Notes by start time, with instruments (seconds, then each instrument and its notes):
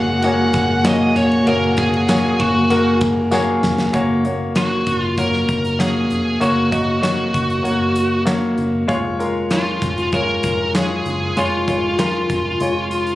Already playing: fingered electric bass F#1, string section A#2 G#3 F#4, grand piano A#3 F#4 G#4 C#5, lead electric guitar F#5
0.22 grand piano A#3 F#4 G#4 C#5, lead electric guitar F#5, ride, tambourine
0.53 fingered electric bass F#1, kick, ride, tambourine
0.85 grand piano A#3 F#4 G#4 C#5, lead electric guitar D#5, snare, clap, ride, tambourine
1.16 fingered electric bass F1, string section A#3, lead electric guitar C#5, ride, tambourine
1.32 ride
1.47 fingered electric bass F#1, grand piano A#3 F#4 G#4 C#5, lead electric guitar A#4, ride
1.77 lead electric guitar G#4, kick, ride, tambourine
1.94 ride
2.08 grand piano A#3 F#4 G#4 C#5, snare, clap, ride, tambourine
2.40 fingered electric bass F#1, lead electric guitar F#4, kick, ride
2.70 fingered electric bass F#1, grand piano A#3 F#4 G#4 A#4, ride, tambourine
3.01 kick, ride, tambourine
3.31 grand piano A#3 F#4 G#4 C#5, snare, tambourine
3.63 fingered electric bass F1, snare, tambourine
3.78 snare
3.93 fingered electric bass F#1, grand piano A#3 F#4 C#5, kick, closed hi-hat
4.25 grand piano A#3 F#4 C#5, closed hi-hat
4.55 grand piano A#3 F#4 C#5, lead electric guitar F#4, snare, clap, closed hi-hat
4.87 fingered electric bass F#1, kick, closed hi-hat
4.98 lead electric guitar F4
5.17 grand piano A#3 F#4 C#5, lead electric guitar A#4, kick, closed hi-hat
5.33 snare
5.49 fingered electric bass F#1, kick, closed hi-hat
5.65 closed hi-hat
5.79 grand piano A#3 F#4 C#5, lead electric guitar G#4, snare, clap, closed hi-hat
6.10 fingered electric bass F1, closed hi-hat
6.40 fingered electric bass F#1, grand piano A#3 F#4 C#5, lead electric guitar F#4, closed hi-hat
6.71 grand piano A#3 F#4 D#5, kick, closed hi-hat
7.02 grand piano A#3 F#4 C#5, lead electric guitar F#4, snare, clap, closed hi-hat
7.34 fingered electric bass F#1, kick, closed hi-hat
7.50 closed hi-hat
7.63 fingered electric bass F#1, grand piano A#3 F#4 C#5, closed hi-hat
7.96 closed hi-hat
8.26 grand piano A#3 F#4 C#5, snare, clap, closed hi-hat
8.58 fingered electric bass F#1, closed hi-hat
8.88 fingered electric bass F1, grand piano G#3 F4 C#5, kick, closed hi-hat
9.19 grand piano G#3 F4 A#4, closed hi-hat
9.50 grand piano G#3 F4 C#5, lead electric guitar F4, snare, clap, closed hi-hat
9.82 fingered electric bass F1, kick, closed hi-hat
9.98 closed hi-hat
10.12 grand piano G#3 F4 C#5, lead electric guitar A#4, kick, closed hi-hat
10.43 fingered electric bass F1, kick, closed hi-hat
10.75 grand piano G#3 F4 C#5, lead electric guitar G#4, snare, clap, closed hi-hat
11.06 fingered electric bass F#1, closed hi-hat
11.37 fingered electric bass F1, grand piano G#3 F4 C#5, lead electric guitar F4, closed hi-hat
11.68 grand piano G#3 F4 C#5, kick, closed hi-hat
11.98 grand piano G#3 F4 A#4, lead electric guitar F4, snare, clap, closed hi-hat
12.30 fingered electric bass F1, kick, closed hi-hat
12.60 fingered electric bass F1, grand piano G#3 F4 C#5, closed hi-hat
12.91 closed hi-hat
13.07 closed hi-hat